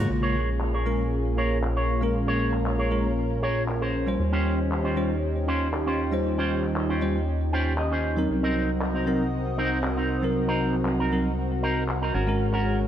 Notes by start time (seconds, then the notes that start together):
Already playing: C#3 G#3 A#3 F4
0.09 A#1 A#3 C#4 F4 G#4
0.22 G#4 A#4 C#5
0.61 clap
0.73 G#4 A#4 C#5
0.86 G#3 C#4 F4 A#4
1.37 G#4 A#4 C#5
1.64 clap
1.76 G#4 A#4 C#5
2.01 G#3 C#4 F4 A#4
2.15 A#4
2.27 G#4 A#4 C#5
2.54 clap
2.66 clap
2.79 G#4 A#4 C#5
2.91 G#3 C#4 F4 A#4
3.42 G#4 A#4 C#5
3.69 clap
3.81 G#4 A#4 C5
4.06 G3 C#4 F4 C5
4.19 D#2 D#4 G4
4.32 C#4 F4 G4 C5
4.72 clap
4.84 C#4 F4 G4 C5
4.96 G3 C#4 F4 C5
5.47 C#4 F4 G4 C5
5.74 clap
5.86 C#4 F4 G4 C5
6.11 G3 C#4 F4 C5
6.38 C#4 F4 G4 C5
6.64 clap
6.76 clap
6.89 C#4 F4 G4 C5
7.01 G3 C#4 F4 C5
7.53 C#4 F4 G4 C5 G5
7.78 D#5, clap
7.92 C#4 F4 G4 C5
8.17 F#3 C4 D#4 A#4
8.29 C2 C4 F#4 A#4 D#5
8.43 C4 D#4 A#4
8.81 clap
8.94 C4 D#4 A#4
9.07 F#3 C4 D#4 A#4
9.58 C4 D#4 A#4
9.84 clap
9.97 C4 D#4 A#4
10.22 F#3 C4 D#4 A#4
10.48 C4 D#4 A#4
10.74 clap
10.85 clap
10.99 C4 D#4 A#4
11.12 F#3 C4 D#4 A#4
11.63 C4 D#4 A#4
11.89 clap
12.02 C4 D#4 A#4
12.14 G#1 G#3 C#4 F#4 A#4
12.27 G#3 C#4 F#4 A#4
12.53 C#4 F#4 A#4